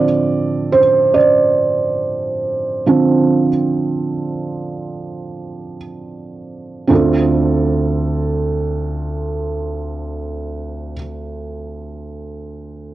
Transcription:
felt piano
Already playing: D3 F3 C4 D5
0.72 C5
1.14 D5
2.86 D3 F3 C4
6.87 D2 C4 D4 F4
6.93 A4

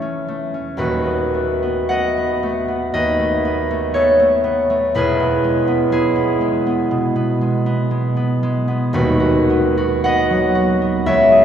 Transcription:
harp
Already playing: E1 E2 E3 A3 E4 A4 C#5
0.02 C#4
0.28 A3
0.54 C#4
0.77 D#1 D#2 F#4 B4
1.06 B3
1.34 A3
1.63 B3
1.89 A3 D#5 F#5
2.17 B3
2.43 A3
2.68 B3
2.94 D#2 B4 D#5
3.19 A3
3.45 B3
3.71 A3
3.94 B3 A4 C#5
4.20 A3
4.44 B3
4.70 A3
4.95 E1 E2 G#4 B4
5.20 B3
5.44 G#3
5.67 B3
5.92 G#3 E4 G#4
6.16 B3
6.41 G#3
6.67 B3
6.91 B2
7.16 B3
7.41 G#3
7.66 B3
7.91 G#3
8.17 B3
8.43 G#3
8.68 B3
8.93 D#1 D#2 F#4 B4
9.20 F#4
9.50 B3
9.77 F#4
10.04 B3 D#5 F#5
10.30 F#3
10.55 F#4
10.82 B3
11.06 C#2 C#5 E5
11.31 G#4

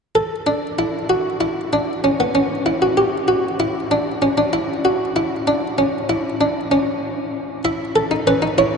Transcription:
harpsichord
0.15 A4
0.47 D4
0.79 E4
1.10 F#4
1.41 E4
1.73 D4
2.04 C#4
2.20 B3
2.35 C#4
2.66 E4
2.82 F#4
2.97 G4
3.28 F#4
3.60 E4
3.91 D4
4.22 C#4
4.38 D4
4.53 E4
4.85 F#4
5.16 E4
5.47 D4
5.78 C#4
6.09 E4
6.41 D4
6.71 C#4
7.65 E4 E5
7.96 A4
8.11 D#4
8.27 C#4 B4
8.42 D#4
8.58 E4 C#5

